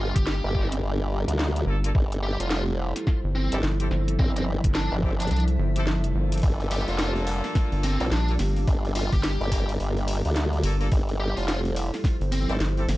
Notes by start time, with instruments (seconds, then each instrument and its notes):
Already playing: wobble bass G1, analog synth pad G3 A#3 D4 F4, ambient pad G4 F5 A#5
0.00 lead electric guitar F4
0.16 analog synth bass G1, lead electric guitar G4, kick, closed hi-hat
0.27 snare
0.44 wobble bass G1
0.55 horn section A#3 D4 F4 G4, kick
0.72 closed hi-hat
0.83 wobble bass G1
1.28 wobble bass D2, closed hi-hat
1.39 snare
1.56 closed hi-hat
1.66 analog synth bass G1, horn section A#3 D4 F4 A4
1.84 horn section A#3 D4 F4 A4, closed hi-hat
1.95 wobble bass G1, ambient pad F3, analog synth pad E4 A4 C5, kick
2.12 closed hi-hat
2.23 lead electric guitar G4
2.40 wobble bass F1, lead electric guitar F4, closed hi-hat
2.51 lead electric guitar F4, snare
2.70 ambient pad E5
2.96 snare, closed hi-hat
3.07 kick, snare
3.24 analog synth bass G1
3.35 lead electric guitar C4
3.52 wobble bass G1, horn section C4 E4 G4 A4, closed hi-hat
3.63 analog synth bass G1, snare
3.80 horn section C4 E4 G4 A4, ambient pad A5, closed hi-hat
3.91 analog synth bass G1, snare
4.08 closed hi-hat
4.19 wobble bass G1, lead electric guitar C4, kick
4.36 lead electric guitar C4, closed hi-hat
4.64 analog synth bass G1, kick, closed hi-hat
4.75 lead electric guitar D4, snare
4.92 wobble bass G1
5.03 horn section C4 E4 G4 A4, kick
5.20 lead electric guitar D4, closed hi-hat
5.22 closed hi-hat
5.27 closed hi-hat
5.31 analog synth bass C2, lead electric guitar D4, closed hi-hat
5.36 closed hi-hat
5.40 closed hi-hat
5.48 closed hi-hat
5.59 analog synth bass G1
5.76 horn section C4 E4 G4 A4, closed hi-hat
5.87 snare
6.04 closed hi-hat
6.15 analog synth bass G1, horn section A#3 D4 F4 A4
6.32 closed hi-hat
6.34 closed hi-hat
6.38 closed hi-hat
6.40 closed hi-hat
6.42 wobble bass G1, analog synth pad G3 A#3 D4 F4, ambient pad G4, kick, closed hi-hat, open hi-hat
6.60 open hi-hat
6.71 lead electric guitar G4, open hi-hat
6.88 wobble bass F1, lead electric guitar F4, ambient pad F5, open hi-hat
6.99 lead electric guitar F4, snare, open hi-hat
7.16 open hi-hat
7.27 open hi-hat
7.44 snare, open hi-hat
7.55 kick, snare, open hi-hat
7.72 analog synth bass G1, open hi-hat
7.83 lead electric guitar C4, open hi-hat
8.00 wobble bass A#1, horn section A#3 D4 F4 A4, open hi-hat
8.11 analog synth bass A#1, lead electric guitar D4, snare, open hi-hat
8.28 horn section A#3 D4 F4 A4, open hi-hat
8.34 ambient pad A#5
8.39 analog synth bass G1, snare, open hi-hat
8.56 open hi-hat
8.68 wobble bass G1, kick, open hi-hat
8.85 open hi-hat
8.95 lead electric guitar F4, open hi-hat
9.12 analog synth bass G1, lead electric guitar G4, kick, open hi-hat
9.23 snare, open hi-hat
9.41 wobble bass G1, open hi-hat
9.51 horn section A#3 D4 F4 G4, kick, open hi-hat
9.69 open hi-hat
9.80 wobble bass G1, open hi-hat
9.97 open hi-hat
10.08 open hi-hat
10.25 wobble bass D2, open hi-hat
10.36 snare, open hi-hat
10.53 open hi-hat
10.63 analog synth bass G1, horn section A#3 D4 F4 A4, open hi-hat
10.80 horn section A#3 D4 F4 A4, open hi-hat
10.91 wobble bass G1, ambient pad F3, analog synth pad G3 E4 A4 C5, kick, open hi-hat
11.09 open hi-hat
11.20 lead electric guitar G4
11.37 wobble bass F1, lead electric guitar F4, ambient pad E5, open hi-hat
11.48 lead electric guitar F4, snare, open hi-hat
11.65 open hi-hat
11.76 open hi-hat
11.94 snare, open hi-hat
12.04 kick, snare, open hi-hat
12.21 analog synth bass G1, ambient pad A5, open hi-hat
12.32 lead electric guitar C4, open hi-hat
12.49 wobble bass G1, horn section C4 E4 G4 A4, open hi-hat
12.60 analog synth bass G1, snare, open hi-hat
12.77 horn section C4 E4 G4 A4, open hi-hat
12.88 analog synth bass G1, snare, open hi-hat